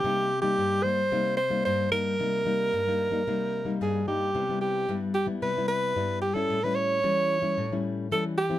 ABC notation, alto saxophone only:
X:1
M:4/4
L:1/16
Q:1/4=111
K:Cm
V:1 name="Alto saxophone"
G3 G3 c4 c2 c2 B2- | B12 A2 G2- | [K:C] G2 G4 G2 B2 B4 G A- | A B ^c8 z2 A2 G2 |]